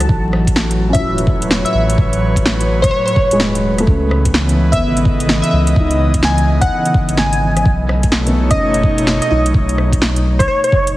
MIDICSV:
0, 0, Header, 1, 6, 480
1, 0, Start_track
1, 0, Tempo, 472441
1, 93, Time_signature, 4, 2, 24, 8
1, 11145, End_track
2, 0, Start_track
2, 0, Title_t, "Digital synth lead"
2, 0, Program_c, 0, 84
2, 946, Note_on_c, 0, 76, 94
2, 1203, Note_off_c, 0, 76, 0
2, 1675, Note_on_c, 0, 76, 89
2, 1737, Note_off_c, 0, 76, 0
2, 1755, Note_on_c, 0, 76, 76
2, 1859, Note_off_c, 0, 76, 0
2, 2868, Note_on_c, 0, 73, 91
2, 2948, Note_off_c, 0, 73, 0
2, 2955, Note_on_c, 0, 73, 86
2, 3083, Note_off_c, 0, 73, 0
2, 3104, Note_on_c, 0, 73, 91
2, 3444, Note_off_c, 0, 73, 0
2, 4796, Note_on_c, 0, 76, 92
2, 5048, Note_off_c, 0, 76, 0
2, 5508, Note_on_c, 0, 76, 87
2, 5573, Note_off_c, 0, 76, 0
2, 5597, Note_on_c, 0, 76, 77
2, 5700, Note_off_c, 0, 76, 0
2, 6347, Note_on_c, 0, 80, 91
2, 6595, Note_off_c, 0, 80, 0
2, 6719, Note_on_c, 0, 78, 97
2, 7052, Note_off_c, 0, 78, 0
2, 7302, Note_on_c, 0, 80, 94
2, 7778, Note_off_c, 0, 80, 0
2, 8644, Note_on_c, 0, 75, 95
2, 8892, Note_off_c, 0, 75, 0
2, 9364, Note_on_c, 0, 75, 90
2, 9421, Note_off_c, 0, 75, 0
2, 9453, Note_on_c, 0, 75, 76
2, 9548, Note_off_c, 0, 75, 0
2, 10558, Note_on_c, 0, 73, 92
2, 10633, Note_off_c, 0, 73, 0
2, 10645, Note_on_c, 0, 73, 91
2, 10769, Note_off_c, 0, 73, 0
2, 10810, Note_on_c, 0, 73, 93
2, 11137, Note_off_c, 0, 73, 0
2, 11145, End_track
3, 0, Start_track
3, 0, Title_t, "Upright piano"
3, 0, Program_c, 1, 0
3, 0, Control_c, 1, 64, 127
3, 0, Note_on_c, 1, 63, 73
3, 105, Control_c, 1, 64, 0
3, 294, Note_off_c, 1, 63, 0
3, 301, Control_c, 1, 64, 127
3, 907, Note_on_c, 1, 61, 63
3, 953, Note_on_c, 1, 64, 54
3, 1009, Note_on_c, 1, 66, 52
3, 2515, Note_off_c, 1, 61, 0
3, 2539, Note_off_c, 1, 64, 0
3, 2566, Note_off_c, 1, 66, 0
3, 3380, Note_on_c, 1, 56, 76
3, 3861, Note_on_c, 1, 57, 68
3, 3912, Note_on_c, 1, 61, 54
3, 3945, Control_c, 1, 64, 0
3, 4116, Control_c, 1, 64, 127
3, 4132, Note_off_c, 1, 56, 0
3, 4146, Note_off_c, 1, 57, 0
3, 4173, Note_off_c, 1, 61, 0
3, 4802, Note_on_c, 1, 59, 52
3, 5888, Note_on_c, 1, 63, 54
3, 6422, Note_off_c, 1, 59, 0
3, 7498, Note_off_c, 1, 63, 0
3, 7785, Control_c, 1, 64, 0
3, 7969, Control_c, 1, 64, 127
3, 8405, Note_on_c, 1, 59, 52
3, 8632, Note_on_c, 1, 61, 55
3, 9456, Note_on_c, 1, 63, 80
3, 10019, Note_off_c, 1, 59, 0
3, 10243, Note_off_c, 1, 61, 0
3, 11076, Note_off_c, 1, 63, 0
3, 11145, End_track
4, 0, Start_track
4, 0, Title_t, "Analog synth pad"
4, 0, Program_c, 2, 89
4, 0, Note_on_c, 2, 52, 84
4, 0, Note_on_c, 2, 54, 78
4, 0, Note_on_c, 2, 66, 78
4, 0, Note_on_c, 2, 69, 74
4, 95, Note_on_c, 2, 45, 72
4, 529, Note_on_c, 2, 71, 74
4, 803, Note_on_c, 2, 73, 82
4, 1113, Note_off_c, 2, 66, 0
4, 1447, Note_off_c, 2, 69, 0
4, 1652, Note_off_c, 2, 52, 0
4, 3930, Note_off_c, 2, 54, 0
4, 3934, Note_off_c, 2, 45, 0
4, 3944, Note_on_c, 2, 49, 76
4, 4007, Note_on_c, 2, 52, 72
4, 4013, Note_on_c, 2, 59, 85
4, 4634, Note_on_c, 2, 75, 72
4, 4780, Note_off_c, 2, 73, 0
4, 5485, Note_off_c, 2, 71, 0
4, 7774, Note_off_c, 2, 52, 0
4, 7778, Note_off_c, 2, 49, 0
4, 7782, Note_on_c, 2, 47, 86
4, 7843, Note_on_c, 2, 57, 81
4, 8104, Note_on_c, 2, 73, 76
4, 8207, Note_on_c, 2, 63, 80
4, 9018, Note_off_c, 2, 59, 0
4, 9064, Note_off_c, 2, 75, 0
4, 11134, Note_off_c, 2, 73, 0
4, 11135, Note_off_c, 2, 57, 0
4, 11135, Note_off_c, 2, 63, 0
4, 11137, Note_off_c, 2, 47, 0
4, 11145, End_track
5, 0, Start_track
5, 0, Title_t, "Sub bass"
5, 0, Program_c, 3, 38
5, 93, Note_on_c, 3, 33, 94
5, 1042, Note_off_c, 3, 33, 0
5, 1057, Note_on_c, 3, 28, 79
5, 1665, Note_off_c, 3, 28, 0
5, 1769, Note_on_c, 3, 33, 100
5, 1997, Note_off_c, 3, 33, 0
5, 2011, Note_on_c, 3, 33, 93
5, 2960, Note_off_c, 3, 33, 0
5, 3357, Note_on_c, 3, 28, 87
5, 3919, Note_off_c, 3, 28, 0
5, 3933, Note_on_c, 3, 37, 92
5, 4882, Note_off_c, 3, 37, 0
5, 4894, Note_on_c, 3, 32, 79
5, 5504, Note_off_c, 3, 32, 0
5, 5614, Note_on_c, 3, 37, 99
5, 5839, Note_off_c, 3, 37, 0
5, 5857, Note_on_c, 3, 37, 94
5, 6804, Note_off_c, 3, 37, 0
5, 7202, Note_on_c, 3, 32, 83
5, 7761, Note_off_c, 3, 32, 0
5, 7776, Note_on_c, 3, 35, 96
5, 8723, Note_off_c, 3, 35, 0
5, 8732, Note_on_c, 3, 30, 76
5, 9343, Note_off_c, 3, 30, 0
5, 9459, Note_on_c, 3, 35, 101
5, 9681, Note_off_c, 3, 35, 0
5, 9698, Note_on_c, 3, 35, 97
5, 10644, Note_off_c, 3, 35, 0
5, 10895, Note_on_c, 3, 30, 100
5, 11134, Note_off_c, 3, 30, 0
5, 11145, End_track
6, 0, Start_track
6, 0, Title_t, "Drums"
6, 4, Note_on_c, 9, 37, 36
6, 4, Note_on_c, 9, 42, 56
6, 92, Note_on_c, 9, 36, 117
6, 105, Note_off_c, 9, 37, 0
6, 105, Note_off_c, 9, 42, 0
6, 193, Note_off_c, 9, 36, 0
6, 335, Note_on_c, 9, 37, 35
6, 437, Note_off_c, 9, 37, 0
6, 481, Note_on_c, 9, 36, 60
6, 484, Note_on_c, 9, 42, 54
6, 568, Note_on_c, 9, 38, 106
6, 582, Note_off_c, 9, 36, 0
6, 585, Note_off_c, 9, 42, 0
6, 670, Note_off_c, 9, 38, 0
6, 719, Note_on_c, 9, 42, 30
6, 821, Note_off_c, 9, 42, 0
6, 960, Note_on_c, 9, 36, 109
6, 962, Note_on_c, 9, 37, 33
6, 962, Note_on_c, 9, 42, 53
6, 1062, Note_off_c, 9, 36, 0
6, 1063, Note_off_c, 9, 37, 0
6, 1063, Note_off_c, 9, 42, 0
6, 1200, Note_on_c, 9, 42, 43
6, 1291, Note_on_c, 9, 36, 102
6, 1302, Note_off_c, 9, 42, 0
6, 1392, Note_off_c, 9, 36, 0
6, 1443, Note_on_c, 9, 42, 55
6, 1531, Note_on_c, 9, 38, 107
6, 1544, Note_off_c, 9, 42, 0
6, 1632, Note_off_c, 9, 38, 0
6, 1683, Note_on_c, 9, 42, 42
6, 1785, Note_off_c, 9, 42, 0
6, 1926, Note_on_c, 9, 42, 55
6, 2011, Note_on_c, 9, 36, 117
6, 2028, Note_off_c, 9, 42, 0
6, 2112, Note_off_c, 9, 36, 0
6, 2164, Note_on_c, 9, 42, 30
6, 2265, Note_off_c, 9, 42, 0
6, 2401, Note_on_c, 9, 36, 60
6, 2407, Note_on_c, 9, 42, 52
6, 2495, Note_on_c, 9, 38, 103
6, 2502, Note_off_c, 9, 36, 0
6, 2508, Note_off_c, 9, 42, 0
6, 2597, Note_off_c, 9, 38, 0
6, 2647, Note_on_c, 9, 42, 29
6, 2749, Note_off_c, 9, 42, 0
6, 2881, Note_on_c, 9, 36, 105
6, 2885, Note_on_c, 9, 37, 32
6, 2885, Note_on_c, 9, 42, 52
6, 2983, Note_off_c, 9, 36, 0
6, 2986, Note_off_c, 9, 37, 0
6, 2986, Note_off_c, 9, 42, 0
6, 3126, Note_on_c, 9, 42, 42
6, 3214, Note_on_c, 9, 36, 99
6, 3228, Note_off_c, 9, 42, 0
6, 3315, Note_off_c, 9, 36, 0
6, 3365, Note_on_c, 9, 42, 53
6, 3452, Note_on_c, 9, 38, 107
6, 3467, Note_off_c, 9, 42, 0
6, 3554, Note_off_c, 9, 38, 0
6, 3610, Note_on_c, 9, 42, 42
6, 3712, Note_off_c, 9, 42, 0
6, 3844, Note_on_c, 9, 37, 35
6, 3844, Note_on_c, 9, 42, 53
6, 3934, Note_on_c, 9, 36, 114
6, 3946, Note_off_c, 9, 37, 0
6, 3946, Note_off_c, 9, 42, 0
6, 4035, Note_off_c, 9, 36, 0
6, 4178, Note_on_c, 9, 37, 34
6, 4279, Note_off_c, 9, 37, 0
6, 4322, Note_on_c, 9, 42, 51
6, 4324, Note_on_c, 9, 36, 57
6, 4411, Note_on_c, 9, 38, 101
6, 4423, Note_off_c, 9, 42, 0
6, 4425, Note_off_c, 9, 36, 0
6, 4512, Note_off_c, 9, 38, 0
6, 4563, Note_on_c, 9, 42, 29
6, 4665, Note_off_c, 9, 42, 0
6, 4804, Note_on_c, 9, 36, 100
6, 4806, Note_on_c, 9, 37, 32
6, 4806, Note_on_c, 9, 42, 50
6, 4905, Note_off_c, 9, 36, 0
6, 4907, Note_off_c, 9, 37, 0
6, 4907, Note_off_c, 9, 42, 0
6, 5047, Note_on_c, 9, 42, 41
6, 5135, Note_on_c, 9, 36, 100
6, 5149, Note_off_c, 9, 42, 0
6, 5236, Note_off_c, 9, 36, 0
6, 5285, Note_on_c, 9, 42, 49
6, 5375, Note_on_c, 9, 38, 100
6, 5387, Note_off_c, 9, 42, 0
6, 5476, Note_off_c, 9, 38, 0
6, 5523, Note_on_c, 9, 42, 42
6, 5624, Note_off_c, 9, 42, 0
6, 5761, Note_on_c, 9, 42, 52
6, 5854, Note_on_c, 9, 36, 109
6, 5863, Note_off_c, 9, 42, 0
6, 5955, Note_off_c, 9, 36, 0
6, 6001, Note_on_c, 9, 42, 29
6, 6102, Note_off_c, 9, 42, 0
6, 6239, Note_on_c, 9, 42, 50
6, 6243, Note_on_c, 9, 36, 56
6, 6327, Note_on_c, 9, 38, 95
6, 6340, Note_off_c, 9, 42, 0
6, 6344, Note_off_c, 9, 36, 0
6, 6428, Note_off_c, 9, 38, 0
6, 6482, Note_on_c, 9, 42, 27
6, 6584, Note_off_c, 9, 42, 0
6, 6723, Note_on_c, 9, 36, 101
6, 6723, Note_on_c, 9, 37, 34
6, 6723, Note_on_c, 9, 42, 50
6, 6824, Note_off_c, 9, 37, 0
6, 6824, Note_off_c, 9, 42, 0
6, 6825, Note_off_c, 9, 36, 0
6, 6965, Note_on_c, 9, 42, 41
6, 7056, Note_on_c, 9, 36, 97
6, 7066, Note_off_c, 9, 42, 0
6, 7157, Note_off_c, 9, 36, 0
6, 7200, Note_on_c, 9, 42, 51
6, 7289, Note_on_c, 9, 38, 97
6, 7302, Note_off_c, 9, 42, 0
6, 7391, Note_off_c, 9, 38, 0
6, 7444, Note_on_c, 9, 42, 42
6, 7546, Note_off_c, 9, 42, 0
6, 7687, Note_on_c, 9, 37, 35
6, 7687, Note_on_c, 9, 42, 53
6, 7777, Note_on_c, 9, 36, 108
6, 7788, Note_off_c, 9, 37, 0
6, 7788, Note_off_c, 9, 42, 0
6, 7878, Note_off_c, 9, 36, 0
6, 8018, Note_on_c, 9, 37, 36
6, 8120, Note_off_c, 9, 37, 0
6, 8161, Note_on_c, 9, 42, 50
6, 8165, Note_on_c, 9, 36, 56
6, 8248, Note_on_c, 9, 38, 93
6, 8263, Note_off_c, 9, 42, 0
6, 8267, Note_off_c, 9, 36, 0
6, 8350, Note_off_c, 9, 38, 0
6, 8399, Note_on_c, 9, 42, 29
6, 8501, Note_off_c, 9, 42, 0
6, 8643, Note_on_c, 9, 37, 36
6, 8643, Note_on_c, 9, 42, 51
6, 8645, Note_on_c, 9, 36, 97
6, 8744, Note_off_c, 9, 37, 0
6, 8744, Note_off_c, 9, 42, 0
6, 8747, Note_off_c, 9, 36, 0
6, 8882, Note_on_c, 9, 42, 43
6, 8976, Note_on_c, 9, 36, 95
6, 8983, Note_off_c, 9, 42, 0
6, 9078, Note_off_c, 9, 36, 0
6, 9125, Note_on_c, 9, 42, 52
6, 9215, Note_on_c, 9, 38, 99
6, 9226, Note_off_c, 9, 42, 0
6, 9316, Note_off_c, 9, 38, 0
6, 9366, Note_on_c, 9, 42, 42
6, 9468, Note_off_c, 9, 42, 0
6, 9610, Note_on_c, 9, 42, 54
6, 9696, Note_on_c, 9, 36, 113
6, 9711, Note_off_c, 9, 42, 0
6, 9797, Note_off_c, 9, 36, 0
6, 9846, Note_on_c, 9, 42, 30
6, 9939, Note_on_c, 9, 37, 37
6, 9948, Note_off_c, 9, 42, 0
6, 10041, Note_off_c, 9, 37, 0
6, 10085, Note_on_c, 9, 36, 56
6, 10090, Note_on_c, 9, 42, 54
6, 10177, Note_on_c, 9, 38, 99
6, 10186, Note_off_c, 9, 36, 0
6, 10191, Note_off_c, 9, 42, 0
6, 10279, Note_off_c, 9, 38, 0
6, 10327, Note_on_c, 9, 42, 31
6, 10429, Note_off_c, 9, 42, 0
6, 10564, Note_on_c, 9, 36, 100
6, 10569, Note_on_c, 9, 37, 38
6, 10569, Note_on_c, 9, 42, 54
6, 10666, Note_off_c, 9, 36, 0
6, 10670, Note_off_c, 9, 37, 0
6, 10670, Note_off_c, 9, 42, 0
6, 10810, Note_on_c, 9, 42, 44
6, 10895, Note_on_c, 9, 36, 96
6, 10912, Note_off_c, 9, 42, 0
6, 10996, Note_off_c, 9, 36, 0
6, 11045, Note_on_c, 9, 42, 54
6, 11145, Note_off_c, 9, 42, 0
6, 11145, End_track
0, 0, End_of_file